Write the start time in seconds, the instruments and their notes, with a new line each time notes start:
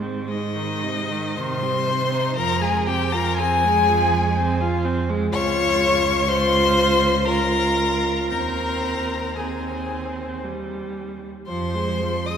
Already playing: cello G#2
0.02 viola C4
0.28 viola G#3, violin D#4 D#5
0.56 viola D#3
0.83 viola C3
1.11 viola D#3
1.37 cello C3, viola D#3, violin C5 C6
1.62 viola G3
1.88 viola C4
2.11 viola D#4
2.36 cello F2, viola F3, violin A#4 A#5
2.61 viola G#3, violin G#4 G#5
2.87 viola C4, violin G4 G5
3.12 viola F4, violin A#4 A#5
3.37 viola C4, violin G#4 G#5
3.65 viola G#3
3.88 viola F3
4.12 viola G#3
4.37 viola C4
4.61 viola F4
4.85 viola C4
5.09 viola G#3
5.32 cello C#2, viola F4, violin C#5 C#6
6.28 viola F4, violin C5 C6
7.25 viola F4, violin A#4 A#5
8.30 cello D#2, viola C4, violin A#4 A#5
9.35 viola C4, violin G#4 G#5
10.44 viola G3
11.47 cello F2, viola F3, violin C5 C6
11.75 viola G#3
12.02 viola F3
12.26 viola G#3, violin D#5 D#6